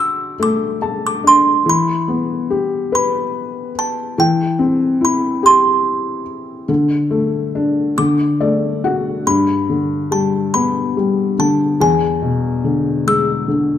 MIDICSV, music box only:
0, 0, Header, 1, 2, 480
1, 0, Start_track
1, 0, Key_signature, 1, "major"
1, 0, Tempo, 840336
1, 952, Time_signature, 6, 3, 24, 8
1, 3824, Tempo, 854701
1, 5744, Tempo, 839161
1, 7842, End_track
2, 0, Start_track
2, 0, Title_t, "Music box"
2, 0, Program_c, 0, 10
2, 0, Note_on_c, 0, 88, 82
2, 215, Note_off_c, 0, 88, 0
2, 244, Note_on_c, 0, 86, 90
2, 602, Note_off_c, 0, 86, 0
2, 608, Note_on_c, 0, 86, 85
2, 723, Note_off_c, 0, 86, 0
2, 728, Note_on_c, 0, 84, 88
2, 832, Note_off_c, 0, 84, 0
2, 968, Note_on_c, 0, 83, 96
2, 1657, Note_off_c, 0, 83, 0
2, 1685, Note_on_c, 0, 83, 87
2, 2163, Note_on_c, 0, 81, 90
2, 2171, Note_off_c, 0, 83, 0
2, 2397, Note_on_c, 0, 79, 84
2, 2403, Note_off_c, 0, 81, 0
2, 2882, Note_on_c, 0, 83, 69
2, 2885, Note_off_c, 0, 79, 0
2, 2986, Note_off_c, 0, 83, 0
2, 3118, Note_on_c, 0, 84, 82
2, 4545, Note_on_c, 0, 86, 91
2, 4767, Note_off_c, 0, 84, 0
2, 5003, Note_off_c, 0, 86, 0
2, 5270, Note_on_c, 0, 83, 79
2, 5748, Note_on_c, 0, 81, 67
2, 5761, Note_off_c, 0, 83, 0
2, 5988, Note_on_c, 0, 83, 77
2, 5995, Note_off_c, 0, 81, 0
2, 6478, Note_on_c, 0, 81, 80
2, 6482, Note_off_c, 0, 83, 0
2, 6717, Note_on_c, 0, 80, 85
2, 6719, Note_off_c, 0, 81, 0
2, 7406, Note_off_c, 0, 80, 0
2, 7439, Note_on_c, 0, 88, 87
2, 7842, Note_off_c, 0, 88, 0
2, 7842, End_track
0, 0, End_of_file